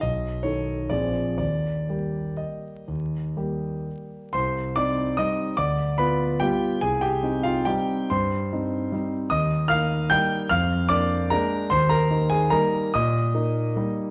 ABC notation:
X:1
M:3/4
L:1/8
Q:1/4=144
K:Eb
V:1 name="Grand piano"
^d2 _d2 =d2 | d4 e2- | e4 z2 | [K:Cm] [cc']2 [dd']2 [ee']2 |
[dd']2 [=B=b]2 [Gg]2 | [Aa] [Gg]2 [Ff] [Gg]2 | [cc']4- [cc'] z | [ee']2 [ff']2 [gg']2 |
[ff']2 [dd']2 [Bb]2 | [cc'] [Bb]2 [Aa] [Bb]2 | [ee']4- [ee'] z |]
V:2 name="Grand piano"
=B,,,2 [^D,^D=A]2 [_B,,,F,C_A]2 | E,,2 [G,B,G]4 | E,,2 [G,B,G]4 | [K:Cm] C,,2 [CE]2 [G,CE]2 |
D,,2 [=B,F]2 [G,B,F]2 | C,,2 [CE]2 [G,CE]2 | G,,2 [CE]2 [G,CE]2 | E,,2 [B,E]2 [G,B,E]2 |
F,,2 [B,D]2 [A,B,D]2 | E,,2 [B,E]2 [G,B,E]2 | B,,2 [B,E]2 [G,B,E]2 |]